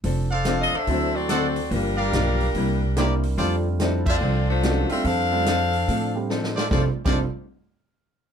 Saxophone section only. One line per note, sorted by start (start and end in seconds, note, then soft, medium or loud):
0.61 0.74 D#5 medium
0.74 1.16 D4 medium
0.74 1.14 A4 medium
0.74 1.16 C5 medium
0.74 1.16 E5 loud
1.14 1.30 C4 medium
1.14 1.29 F#4 medium
1.14 1.29 A4 medium
1.14 1.30 D5 medium
1.30 1.69 C4 medium
1.30 1.69 F#4 medium
1.30 1.69 A4 medium
1.30 1.69 D5 medium
1.72 3.24 G3 medium
1.72 3.24 D4 medium
1.72 2.56 F4 medium
1.72 3.24 A#4 medium
4.08 4.46 C4 medium
4.08 4.46 F4 medium
4.08 4.46 A4 medium
4.08 4.47 D5 medium
4.48 4.87 A3 medium
4.48 4.87 D4 medium
4.48 4.88 F4 medium
4.48 4.87 C5 medium
4.90 5.04 C4 medium
4.90 5.04 F4 medium
4.90 5.04 A4 medium
4.90 5.04 E5 medium
5.05 6.30 D4 medium
5.05 6.30 A4 medium
5.05 6.30 C5 medium
5.05 6.30 F5 loud